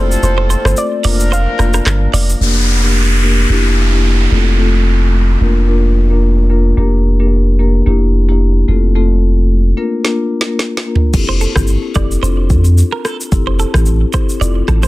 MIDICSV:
0, 0, Header, 1, 8, 480
1, 0, Start_track
1, 0, Key_signature, -1, "major"
1, 0, Tempo, 545455
1, 202, Time_signature, 4, 2, 24, 8
1, 13092, End_track
2, 0, Start_track
2, 0, Title_t, "Clean electric guitar"
2, 0, Program_c, 0, 27
2, 332, Note_on_c, 0, 72, 78
2, 413, Note_off_c, 0, 72, 0
2, 441, Note_on_c, 0, 72, 78
2, 539, Note_off_c, 0, 72, 0
2, 921, Note_on_c, 0, 74, 84
2, 1019, Note_off_c, 0, 74, 0
2, 1161, Note_on_c, 0, 72, 88
2, 1259, Note_off_c, 0, 72, 0
2, 1402, Note_on_c, 0, 70, 77
2, 1500, Note_off_c, 0, 70, 0
2, 1534, Note_on_c, 0, 70, 83
2, 1614, Note_off_c, 0, 70, 0
2, 1879, Note_on_c, 0, 74, 74
2, 1978, Note_off_c, 0, 74, 0
2, 9933, Note_on_c, 0, 72, 72
2, 10013, Note_off_c, 0, 72, 0
2, 10042, Note_on_c, 0, 69, 78
2, 10140, Note_off_c, 0, 69, 0
2, 10521, Note_on_c, 0, 74, 70
2, 10619, Note_off_c, 0, 74, 0
2, 10760, Note_on_c, 0, 72, 81
2, 10938, Note_off_c, 0, 72, 0
2, 11373, Note_on_c, 0, 70, 78
2, 11483, Note_off_c, 0, 70, 0
2, 11483, Note_on_c, 0, 69, 70
2, 11580, Note_off_c, 0, 69, 0
2, 11854, Note_on_c, 0, 72, 74
2, 11934, Note_off_c, 0, 72, 0
2, 11964, Note_on_c, 0, 69, 76
2, 12061, Note_off_c, 0, 69, 0
2, 12442, Note_on_c, 0, 72, 82
2, 12539, Note_off_c, 0, 72, 0
2, 12682, Note_on_c, 0, 74, 88
2, 12779, Note_off_c, 0, 74, 0
2, 12923, Note_on_c, 0, 69, 76
2, 13020, Note_off_c, 0, 69, 0
2, 13053, Note_on_c, 0, 72, 83
2, 13092, Note_off_c, 0, 72, 0
2, 13092, End_track
3, 0, Start_track
3, 0, Title_t, "Synth pluck"
3, 0, Program_c, 1, 84
3, 0, Note_on_c, 1, 72, 86
3, 187, Note_off_c, 1, 72, 0
3, 205, Note_on_c, 1, 72, 88
3, 549, Note_off_c, 1, 72, 0
3, 578, Note_on_c, 1, 72, 80
3, 685, Note_on_c, 1, 74, 94
3, 687, Note_off_c, 1, 72, 0
3, 1169, Note_on_c, 1, 77, 85
3, 1178, Note_off_c, 1, 74, 0
3, 1850, Note_off_c, 1, 77, 0
3, 13092, End_track
4, 0, Start_track
4, 0, Title_t, "Marimba"
4, 0, Program_c, 2, 12
4, 0, Note_on_c, 2, 57, 77
4, 0, Note_on_c, 2, 60, 72
4, 0, Note_on_c, 2, 65, 71
4, 0, Note_on_c, 2, 69, 88
4, 145, Note_off_c, 2, 57, 0
4, 146, Note_off_c, 2, 60, 0
4, 147, Note_off_c, 2, 65, 0
4, 148, Note_off_c, 2, 69, 0
4, 571, Note_on_c, 2, 57, 81
4, 573, Note_on_c, 2, 60, 72
4, 575, Note_on_c, 2, 65, 71
4, 576, Note_on_c, 2, 69, 89
4, 746, Note_off_c, 2, 57, 0
4, 747, Note_off_c, 2, 60, 0
4, 748, Note_off_c, 2, 65, 0
4, 749, Note_off_c, 2, 69, 0
4, 922, Note_on_c, 2, 58, 82
4, 923, Note_on_c, 2, 62, 69
4, 926, Note_on_c, 2, 65, 72
4, 928, Note_on_c, 2, 70, 87
4, 1108, Note_off_c, 2, 58, 0
4, 1108, Note_off_c, 2, 62, 0
4, 1110, Note_off_c, 2, 65, 0
4, 1111, Note_off_c, 2, 70, 0
4, 1402, Note_on_c, 2, 58, 76
4, 1404, Note_on_c, 2, 62, 73
4, 1405, Note_on_c, 2, 65, 71
4, 1407, Note_on_c, 2, 70, 87
4, 1588, Note_off_c, 2, 58, 0
4, 1589, Note_off_c, 2, 62, 0
4, 1589, Note_off_c, 2, 65, 0
4, 1590, Note_off_c, 2, 70, 0
4, 2120, Note_on_c, 2, 58, 84
4, 2122, Note_on_c, 2, 62, 78
4, 2123, Note_on_c, 2, 67, 78
4, 2126, Note_on_c, 2, 70, 94
4, 2461, Note_off_c, 2, 58, 0
4, 2462, Note_off_c, 2, 62, 0
4, 2463, Note_off_c, 2, 67, 0
4, 2464, Note_off_c, 2, 70, 0
4, 2491, Note_on_c, 2, 58, 71
4, 2492, Note_on_c, 2, 62, 66
4, 2493, Note_on_c, 2, 67, 68
4, 2496, Note_on_c, 2, 70, 80
4, 2814, Note_off_c, 2, 58, 0
4, 2815, Note_off_c, 2, 62, 0
4, 2815, Note_off_c, 2, 67, 0
4, 2817, Note_off_c, 2, 70, 0
4, 2841, Note_on_c, 2, 58, 70
4, 2842, Note_on_c, 2, 62, 64
4, 2845, Note_on_c, 2, 67, 68
4, 2846, Note_on_c, 2, 70, 78
4, 3064, Note_off_c, 2, 58, 0
4, 3064, Note_off_c, 2, 62, 0
4, 3066, Note_off_c, 2, 67, 0
4, 3066, Note_off_c, 2, 70, 0
4, 3078, Note_on_c, 2, 58, 88
4, 3080, Note_on_c, 2, 62, 82
4, 3081, Note_on_c, 2, 64, 79
4, 3084, Note_on_c, 2, 67, 98
4, 3420, Note_off_c, 2, 58, 0
4, 3421, Note_off_c, 2, 62, 0
4, 3422, Note_off_c, 2, 64, 0
4, 3423, Note_off_c, 2, 67, 0
4, 3450, Note_on_c, 2, 58, 73
4, 3452, Note_on_c, 2, 62, 64
4, 3454, Note_on_c, 2, 64, 65
4, 3456, Note_on_c, 2, 67, 76
4, 3774, Note_off_c, 2, 58, 0
4, 3775, Note_off_c, 2, 62, 0
4, 3776, Note_off_c, 2, 64, 0
4, 3777, Note_off_c, 2, 67, 0
4, 3796, Note_on_c, 2, 57, 69
4, 3798, Note_on_c, 2, 60, 65
4, 3799, Note_on_c, 2, 65, 64
4, 3801, Note_on_c, 2, 69, 76
4, 4021, Note_off_c, 2, 57, 0
4, 4022, Note_off_c, 2, 60, 0
4, 4023, Note_off_c, 2, 65, 0
4, 4024, Note_off_c, 2, 69, 0
4, 4036, Note_on_c, 2, 57, 86
4, 4037, Note_on_c, 2, 60, 81
4, 4041, Note_on_c, 2, 65, 81
4, 4041, Note_on_c, 2, 69, 97
4, 4707, Note_off_c, 2, 57, 0
4, 4708, Note_off_c, 2, 60, 0
4, 4709, Note_off_c, 2, 65, 0
4, 4709, Note_off_c, 2, 69, 0
4, 4758, Note_on_c, 2, 58, 72
4, 4760, Note_on_c, 2, 62, 64
4, 4762, Note_on_c, 2, 65, 65
4, 4764, Note_on_c, 2, 70, 80
4, 4982, Note_off_c, 2, 58, 0
4, 4983, Note_off_c, 2, 62, 0
4, 4984, Note_off_c, 2, 65, 0
4, 4985, Note_off_c, 2, 70, 0
4, 4998, Note_on_c, 2, 58, 86
4, 5000, Note_on_c, 2, 62, 84
4, 5002, Note_on_c, 2, 65, 86
4, 5003, Note_on_c, 2, 70, 94
4, 5186, Note_off_c, 2, 58, 0
4, 5187, Note_off_c, 2, 62, 0
4, 5188, Note_off_c, 2, 65, 0
4, 5188, Note_off_c, 2, 70, 0
4, 5373, Note_on_c, 2, 58, 74
4, 5373, Note_on_c, 2, 62, 70
4, 5376, Note_on_c, 2, 65, 64
4, 5377, Note_on_c, 2, 70, 80
4, 5547, Note_off_c, 2, 58, 0
4, 5547, Note_off_c, 2, 62, 0
4, 5549, Note_off_c, 2, 65, 0
4, 5549, Note_off_c, 2, 70, 0
4, 5719, Note_on_c, 2, 58, 68
4, 5720, Note_on_c, 2, 62, 66
4, 5722, Note_on_c, 2, 65, 68
4, 5724, Note_on_c, 2, 70, 79
4, 5906, Note_off_c, 2, 58, 0
4, 5907, Note_off_c, 2, 62, 0
4, 5908, Note_off_c, 2, 65, 0
4, 5909, Note_off_c, 2, 70, 0
4, 5960, Note_on_c, 2, 58, 92
4, 5962, Note_on_c, 2, 62, 79
4, 5963, Note_on_c, 2, 67, 82
4, 5964, Note_on_c, 2, 70, 95
4, 6301, Note_off_c, 2, 58, 0
4, 6302, Note_off_c, 2, 62, 0
4, 6303, Note_off_c, 2, 67, 0
4, 6303, Note_off_c, 2, 70, 0
4, 6333, Note_on_c, 2, 58, 76
4, 6334, Note_on_c, 2, 62, 68
4, 6335, Note_on_c, 2, 67, 66
4, 6337, Note_on_c, 2, 70, 81
4, 6655, Note_off_c, 2, 58, 0
4, 6656, Note_off_c, 2, 62, 0
4, 6656, Note_off_c, 2, 67, 0
4, 6657, Note_off_c, 2, 70, 0
4, 6681, Note_on_c, 2, 58, 74
4, 6683, Note_on_c, 2, 62, 66
4, 6684, Note_on_c, 2, 67, 65
4, 6687, Note_on_c, 2, 70, 77
4, 6904, Note_off_c, 2, 58, 0
4, 6905, Note_off_c, 2, 62, 0
4, 6906, Note_off_c, 2, 67, 0
4, 6907, Note_off_c, 2, 70, 0
4, 6919, Note_on_c, 2, 58, 90
4, 6921, Note_on_c, 2, 62, 82
4, 6922, Note_on_c, 2, 64, 81
4, 6926, Note_on_c, 2, 67, 99
4, 7261, Note_off_c, 2, 58, 0
4, 7262, Note_off_c, 2, 62, 0
4, 7262, Note_off_c, 2, 64, 0
4, 7264, Note_off_c, 2, 67, 0
4, 7291, Note_on_c, 2, 58, 74
4, 7292, Note_on_c, 2, 62, 69
4, 7294, Note_on_c, 2, 64, 68
4, 7296, Note_on_c, 2, 67, 82
4, 7614, Note_off_c, 2, 58, 0
4, 7615, Note_off_c, 2, 62, 0
4, 7616, Note_off_c, 2, 64, 0
4, 7617, Note_off_c, 2, 67, 0
4, 7639, Note_on_c, 2, 57, 72
4, 7641, Note_on_c, 2, 60, 67
4, 7644, Note_on_c, 2, 65, 67
4, 7644, Note_on_c, 2, 69, 79
4, 7863, Note_off_c, 2, 57, 0
4, 7864, Note_off_c, 2, 60, 0
4, 7865, Note_off_c, 2, 65, 0
4, 7865, Note_off_c, 2, 69, 0
4, 7879, Note_on_c, 2, 57, 85
4, 7881, Note_on_c, 2, 60, 81
4, 7882, Note_on_c, 2, 65, 83
4, 7885, Note_on_c, 2, 69, 101
4, 8548, Note_off_c, 2, 57, 0
4, 8549, Note_off_c, 2, 60, 0
4, 8550, Note_off_c, 2, 65, 0
4, 8551, Note_off_c, 2, 69, 0
4, 8598, Note_on_c, 2, 58, 74
4, 8599, Note_on_c, 2, 62, 67
4, 8601, Note_on_c, 2, 65, 66
4, 8603, Note_on_c, 2, 70, 82
4, 8823, Note_off_c, 2, 58, 0
4, 8823, Note_off_c, 2, 62, 0
4, 8824, Note_off_c, 2, 65, 0
4, 8825, Note_off_c, 2, 70, 0
4, 8841, Note_on_c, 2, 58, 86
4, 8842, Note_on_c, 2, 62, 86
4, 8843, Note_on_c, 2, 65, 82
4, 8846, Note_on_c, 2, 70, 102
4, 9027, Note_off_c, 2, 58, 0
4, 9027, Note_off_c, 2, 62, 0
4, 9028, Note_off_c, 2, 65, 0
4, 9029, Note_off_c, 2, 70, 0
4, 9212, Note_on_c, 2, 58, 74
4, 9215, Note_on_c, 2, 62, 66
4, 9216, Note_on_c, 2, 65, 70
4, 9217, Note_on_c, 2, 70, 82
4, 9387, Note_off_c, 2, 58, 0
4, 9388, Note_off_c, 2, 62, 0
4, 9388, Note_off_c, 2, 65, 0
4, 9389, Note_off_c, 2, 70, 0
4, 9559, Note_on_c, 2, 58, 70
4, 9561, Note_on_c, 2, 62, 68
4, 9563, Note_on_c, 2, 65, 66
4, 9565, Note_on_c, 2, 70, 82
4, 9746, Note_off_c, 2, 58, 0
4, 9747, Note_off_c, 2, 62, 0
4, 9748, Note_off_c, 2, 65, 0
4, 9749, Note_off_c, 2, 70, 0
4, 9798, Note_on_c, 2, 60, 91
4, 9799, Note_on_c, 2, 64, 87
4, 9801, Note_on_c, 2, 67, 80
4, 9803, Note_on_c, 2, 69, 97
4, 10140, Note_off_c, 2, 60, 0
4, 10141, Note_off_c, 2, 64, 0
4, 10141, Note_off_c, 2, 67, 0
4, 10142, Note_off_c, 2, 69, 0
4, 10171, Note_on_c, 2, 60, 76
4, 10173, Note_on_c, 2, 64, 71
4, 10176, Note_on_c, 2, 69, 80
4, 10346, Note_off_c, 2, 60, 0
4, 10347, Note_off_c, 2, 64, 0
4, 10349, Note_off_c, 2, 69, 0
4, 10519, Note_on_c, 2, 60, 72
4, 10520, Note_on_c, 2, 64, 69
4, 10525, Note_on_c, 2, 69, 84
4, 10706, Note_off_c, 2, 60, 0
4, 10707, Note_off_c, 2, 64, 0
4, 10709, Note_off_c, 2, 69, 0
4, 10758, Note_on_c, 2, 60, 97
4, 10760, Note_on_c, 2, 62, 87
4, 10762, Note_on_c, 2, 65, 86
4, 10764, Note_on_c, 2, 69, 103
4, 10982, Note_off_c, 2, 60, 0
4, 10983, Note_off_c, 2, 62, 0
4, 10984, Note_off_c, 2, 65, 0
4, 10985, Note_off_c, 2, 69, 0
4, 10999, Note_on_c, 2, 60, 77
4, 11001, Note_on_c, 2, 62, 70
4, 11003, Note_on_c, 2, 65, 71
4, 11004, Note_on_c, 2, 69, 85
4, 11186, Note_off_c, 2, 60, 0
4, 11187, Note_off_c, 2, 62, 0
4, 11188, Note_off_c, 2, 65, 0
4, 11189, Note_off_c, 2, 69, 0
4, 11719, Note_on_c, 2, 60, 90
4, 11720, Note_on_c, 2, 64, 86
4, 11723, Note_on_c, 2, 67, 85
4, 11725, Note_on_c, 2, 69, 99
4, 12061, Note_off_c, 2, 60, 0
4, 12061, Note_off_c, 2, 64, 0
4, 12062, Note_off_c, 2, 67, 0
4, 12063, Note_off_c, 2, 69, 0
4, 12091, Note_on_c, 2, 60, 75
4, 12093, Note_on_c, 2, 64, 73
4, 12094, Note_on_c, 2, 67, 69
4, 12096, Note_on_c, 2, 69, 87
4, 12266, Note_off_c, 2, 60, 0
4, 12267, Note_off_c, 2, 64, 0
4, 12268, Note_off_c, 2, 67, 0
4, 12269, Note_off_c, 2, 69, 0
4, 12438, Note_on_c, 2, 60, 74
4, 12440, Note_on_c, 2, 64, 72
4, 12443, Note_on_c, 2, 67, 67
4, 12445, Note_on_c, 2, 69, 82
4, 12626, Note_off_c, 2, 60, 0
4, 12627, Note_off_c, 2, 64, 0
4, 12628, Note_off_c, 2, 67, 0
4, 12629, Note_off_c, 2, 69, 0
4, 12680, Note_on_c, 2, 60, 91
4, 12682, Note_on_c, 2, 64, 83
4, 12683, Note_on_c, 2, 65, 88
4, 12686, Note_on_c, 2, 69, 100
4, 12903, Note_off_c, 2, 60, 0
4, 12904, Note_off_c, 2, 64, 0
4, 12905, Note_off_c, 2, 65, 0
4, 12906, Note_off_c, 2, 69, 0
4, 12919, Note_on_c, 2, 60, 76
4, 12921, Note_on_c, 2, 64, 71
4, 12922, Note_on_c, 2, 65, 68
4, 12925, Note_on_c, 2, 69, 84
4, 13092, Note_off_c, 2, 60, 0
4, 13092, Note_off_c, 2, 64, 0
4, 13092, Note_off_c, 2, 65, 0
4, 13092, Note_off_c, 2, 69, 0
4, 13092, End_track
5, 0, Start_track
5, 0, Title_t, "Horn section"
5, 0, Program_c, 3, 61
5, 0, Note_on_c, 3, 53, 84
5, 0, Note_on_c, 3, 57, 82
5, 0, Note_on_c, 3, 60, 86
5, 0, Note_on_c, 3, 69, 89
5, 667, Note_off_c, 3, 53, 0
5, 667, Note_off_c, 3, 57, 0
5, 667, Note_off_c, 3, 60, 0
5, 667, Note_off_c, 3, 69, 0
5, 920, Note_on_c, 3, 53, 85
5, 920, Note_on_c, 3, 58, 87
5, 920, Note_on_c, 3, 62, 85
5, 920, Note_on_c, 3, 70, 94
5, 1861, Note_off_c, 3, 58, 0
5, 1861, Note_off_c, 3, 62, 0
5, 1861, Note_off_c, 3, 70, 0
5, 1862, Note_off_c, 3, 53, 0
5, 13092, End_track
6, 0, Start_track
6, 0, Title_t, "Sub bass"
6, 0, Program_c, 4, 38
6, 0, Note_on_c, 4, 29, 93
6, 145, Note_off_c, 4, 29, 0
6, 201, Note_on_c, 4, 29, 115
6, 487, Note_off_c, 4, 29, 0
6, 573, Note_on_c, 4, 31, 97
6, 656, Note_off_c, 4, 31, 0
6, 922, Note_on_c, 4, 29, 113
6, 1291, Note_off_c, 4, 29, 0
6, 1402, Note_on_c, 4, 29, 90
6, 1586, Note_off_c, 4, 29, 0
6, 1640, Note_on_c, 4, 31, 92
6, 1825, Note_off_c, 4, 31, 0
6, 1879, Note_on_c, 4, 29, 97
6, 2064, Note_off_c, 4, 29, 0
6, 2119, Note_on_c, 4, 29, 83
6, 3045, Note_off_c, 4, 29, 0
6, 3077, Note_on_c, 4, 29, 80
6, 3764, Note_off_c, 4, 29, 0
6, 3799, Note_on_c, 4, 29, 82
6, 4725, Note_off_c, 4, 29, 0
6, 4761, Note_on_c, 4, 29, 88
6, 5926, Note_off_c, 4, 29, 0
6, 5960, Note_on_c, 4, 29, 82
6, 6886, Note_off_c, 4, 29, 0
6, 6922, Note_on_c, 4, 29, 81
6, 7606, Note_off_c, 4, 29, 0
6, 7642, Note_on_c, 4, 29, 83
6, 8567, Note_off_c, 4, 29, 0
6, 9801, Note_on_c, 4, 29, 107
6, 10087, Note_off_c, 4, 29, 0
6, 10173, Note_on_c, 4, 31, 90
6, 10358, Note_off_c, 4, 31, 0
6, 10522, Note_on_c, 4, 29, 104
6, 10706, Note_off_c, 4, 29, 0
6, 10761, Note_on_c, 4, 29, 102
6, 11000, Note_on_c, 4, 41, 92
6, 11014, Note_off_c, 4, 29, 0
6, 11286, Note_off_c, 4, 41, 0
6, 11722, Note_on_c, 4, 29, 100
6, 12008, Note_off_c, 4, 29, 0
6, 12095, Note_on_c, 4, 33, 86
6, 12362, Note_off_c, 4, 33, 0
6, 12682, Note_on_c, 4, 29, 104
6, 12866, Note_off_c, 4, 29, 0
6, 12921, Note_on_c, 4, 33, 98
6, 13092, Note_off_c, 4, 33, 0
6, 13092, End_track
7, 0, Start_track
7, 0, Title_t, "Downlifter"
7, 0, Program_c, 5, 103
7, 2121, Note_on_c, 5, 60, 77
7, 5961, Note_off_c, 5, 60, 0
7, 13092, End_track
8, 0, Start_track
8, 0, Title_t, "Drums"
8, 103, Note_on_c, 9, 82, 79
8, 191, Note_off_c, 9, 82, 0
8, 204, Note_on_c, 9, 82, 72
8, 292, Note_off_c, 9, 82, 0
8, 442, Note_on_c, 9, 82, 56
8, 530, Note_off_c, 9, 82, 0
8, 573, Note_on_c, 9, 37, 121
8, 586, Note_on_c, 9, 82, 79
8, 661, Note_off_c, 9, 37, 0
8, 674, Note_off_c, 9, 82, 0
8, 675, Note_on_c, 9, 82, 71
8, 763, Note_off_c, 9, 82, 0
8, 917, Note_on_c, 9, 46, 81
8, 917, Note_on_c, 9, 82, 55
8, 1005, Note_off_c, 9, 46, 0
8, 1005, Note_off_c, 9, 82, 0
8, 1058, Note_on_c, 9, 82, 79
8, 1146, Note_off_c, 9, 82, 0
8, 1172, Note_on_c, 9, 82, 88
8, 1260, Note_off_c, 9, 82, 0
8, 1399, Note_on_c, 9, 37, 87
8, 1402, Note_on_c, 9, 82, 46
8, 1487, Note_off_c, 9, 37, 0
8, 1490, Note_off_c, 9, 82, 0
8, 1528, Note_on_c, 9, 82, 65
8, 1532, Note_on_c, 9, 37, 85
8, 1616, Note_off_c, 9, 82, 0
8, 1620, Note_off_c, 9, 37, 0
8, 1641, Note_on_c, 9, 37, 91
8, 1641, Note_on_c, 9, 39, 91
8, 1644, Note_on_c, 9, 82, 81
8, 1729, Note_off_c, 9, 37, 0
8, 1729, Note_off_c, 9, 39, 0
8, 1732, Note_off_c, 9, 82, 0
8, 1885, Note_on_c, 9, 46, 82
8, 1885, Note_on_c, 9, 82, 60
8, 1973, Note_off_c, 9, 46, 0
8, 1973, Note_off_c, 9, 82, 0
8, 2020, Note_on_c, 9, 82, 82
8, 2108, Note_off_c, 9, 82, 0
8, 8840, Note_on_c, 9, 38, 58
8, 8928, Note_off_c, 9, 38, 0
8, 9161, Note_on_c, 9, 38, 74
8, 9249, Note_off_c, 9, 38, 0
8, 9321, Note_on_c, 9, 38, 73
8, 9409, Note_off_c, 9, 38, 0
8, 9480, Note_on_c, 9, 38, 94
8, 9568, Note_off_c, 9, 38, 0
8, 9640, Note_on_c, 9, 43, 94
8, 9728, Note_off_c, 9, 43, 0
8, 9799, Note_on_c, 9, 82, 66
8, 9800, Note_on_c, 9, 49, 88
8, 9801, Note_on_c, 9, 36, 115
8, 9887, Note_off_c, 9, 82, 0
8, 9888, Note_off_c, 9, 49, 0
8, 9889, Note_off_c, 9, 36, 0
8, 10040, Note_on_c, 9, 82, 54
8, 10128, Note_off_c, 9, 82, 0
8, 10169, Note_on_c, 9, 37, 114
8, 10174, Note_on_c, 9, 36, 89
8, 10182, Note_on_c, 9, 82, 75
8, 10257, Note_off_c, 9, 37, 0
8, 10262, Note_off_c, 9, 36, 0
8, 10270, Note_off_c, 9, 82, 0
8, 10272, Note_on_c, 9, 82, 66
8, 10360, Note_off_c, 9, 82, 0
8, 10515, Note_on_c, 9, 82, 55
8, 10521, Note_on_c, 9, 36, 94
8, 10524, Note_on_c, 9, 37, 86
8, 10603, Note_off_c, 9, 82, 0
8, 10609, Note_off_c, 9, 36, 0
8, 10612, Note_off_c, 9, 37, 0
8, 10660, Note_on_c, 9, 82, 74
8, 10748, Note_off_c, 9, 82, 0
8, 10770, Note_on_c, 9, 82, 86
8, 10858, Note_off_c, 9, 82, 0
8, 10999, Note_on_c, 9, 82, 44
8, 11000, Note_on_c, 9, 36, 90
8, 11087, Note_off_c, 9, 82, 0
8, 11088, Note_off_c, 9, 36, 0
8, 11128, Note_on_c, 9, 82, 61
8, 11216, Note_off_c, 9, 82, 0
8, 11245, Note_on_c, 9, 82, 77
8, 11333, Note_off_c, 9, 82, 0
8, 11483, Note_on_c, 9, 37, 100
8, 11485, Note_on_c, 9, 82, 54
8, 11571, Note_off_c, 9, 37, 0
8, 11573, Note_off_c, 9, 82, 0
8, 11623, Note_on_c, 9, 82, 77
8, 11711, Note_off_c, 9, 82, 0
8, 11722, Note_on_c, 9, 36, 120
8, 11722, Note_on_c, 9, 82, 69
8, 11810, Note_off_c, 9, 36, 0
8, 11810, Note_off_c, 9, 82, 0
8, 11962, Note_on_c, 9, 82, 53
8, 12050, Note_off_c, 9, 82, 0
8, 12091, Note_on_c, 9, 37, 110
8, 12095, Note_on_c, 9, 36, 88
8, 12104, Note_on_c, 9, 82, 73
8, 12179, Note_off_c, 9, 37, 0
8, 12183, Note_off_c, 9, 36, 0
8, 12192, Note_off_c, 9, 82, 0
8, 12194, Note_on_c, 9, 82, 69
8, 12282, Note_off_c, 9, 82, 0
8, 12435, Note_on_c, 9, 82, 54
8, 12442, Note_on_c, 9, 36, 92
8, 12444, Note_on_c, 9, 37, 80
8, 12523, Note_off_c, 9, 82, 0
8, 12530, Note_off_c, 9, 36, 0
8, 12532, Note_off_c, 9, 37, 0
8, 12578, Note_on_c, 9, 82, 72
8, 12666, Note_off_c, 9, 82, 0
8, 12690, Note_on_c, 9, 82, 84
8, 12778, Note_off_c, 9, 82, 0
8, 12918, Note_on_c, 9, 37, 85
8, 12921, Note_on_c, 9, 36, 91
8, 12921, Note_on_c, 9, 82, 41
8, 13006, Note_off_c, 9, 37, 0
8, 13009, Note_off_c, 9, 36, 0
8, 13009, Note_off_c, 9, 82, 0
8, 13048, Note_on_c, 9, 82, 61
8, 13053, Note_on_c, 9, 37, 81
8, 13092, Note_off_c, 9, 37, 0
8, 13092, Note_off_c, 9, 82, 0
8, 13092, End_track
0, 0, End_of_file